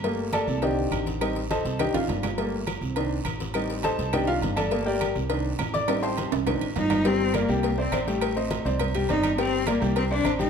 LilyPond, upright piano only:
<<
  \new Staff \with { instrumentName = "Upright piano" } { \time 4/4 \key c \dorian \tempo 4 = 206 r4 <a' d'' a''>4 <g' d'' ees'' g''>4. r8 | r4 <a' c'' ees'' a''>4 <g' d'' ees'' g''>8 <f' f''>8 r4 | r1 | r4 <a' c'' ees'' a''>4 <g' d'' ees'' g''>8 <f' f''>8 r8 <a' d'' a''>8~ |
<a' d'' a''>8 <g' bes' d'' g''>4 r2 <d'' d'''>8~ | <d'' d'''>8 <c'' g'' a'' c'''>4 r2 r8 | <g g' g''>4 <bes bes' d''>8 <g g' g''>4 <c' c'' d''>8 <c' c'' d''>8 <g g' g''>8~ | <g g' g''>8 <c' c'' ees''>4 <c' c'' d''>4 <g g' g''>8 <c' c'' d''>4 |
<g g' g''>4 <bes bes' d''>8 <g g' g''>4 <c' c'' d''>8 <c' c'' d''>8 <g g' g''>8 | }
  \new Staff \with { instrumentName = "Upright piano" } { \time 4/4 \key c \dorian <g a bes>2 <d ees c'>2 | <g c' ees'>8 r4. <ees c' d'>4. r8 | <g a bes>8 r4. <ees c' d'>8 r4. | <g c' ees'>2 <ees c' d'>4. r8 |
<g a bes>8 r4. <ees c' d'>8 r4. | <g c' ees'>4. r8 <ees c' d'>8 r4. | r1 | r1 |
r1 | }
>>